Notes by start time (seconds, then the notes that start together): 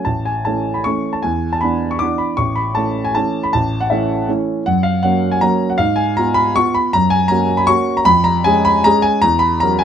0.05 A1 A5
0.25 G#5
0.45 E3 A3 C#4 A5
0.74 B5
0.84 E3 A3 C#4 C#6
1.13 A5
1.22 E2 G#5
1.53 A5
1.61 E3 B3 D4 B5
1.91 C#6
1.99 E3 B3 D4 D6
2.18 B5
2.37 A1 C#6
2.56 B5
2.75 E3 A3 C#4 A5
3.05 G#5
3.15 E3 A3 C#4 A5
3.43 B5
3.53 A1 A5
3.81 F#5
3.90 E3 A3 C#4 E5
4.28 E3 A3 C#4
4.66 F#2 F#5
4.83 F5
5.03 F#3 A#3 C#4 F#5
5.31 G#5
5.41 F#3 A#3 C#4 A#5
5.70 F#5
5.78 G#2 F5
5.96 G#5
6.17 B3 F4 A#5
6.34 B5
6.56 B3 F4 C#6
6.74 B5
6.93 F#2 A#5
7.10 G#5
7.28 A#3 C#4 F#4 A#5
7.57 B5
7.67 A#3 C#4 F#4 C#6
7.97 A#5
8.05 F2 B5
8.24 A#5
8.44 G#3 C#4 G#4 G#5
8.65 B5
8.84 G#3 C#4 G#4 A#5
9.02 G#5
9.22 E2 A#5
9.39 B5
9.60 F#3 C#4 A#4 A#5
9.79 G#5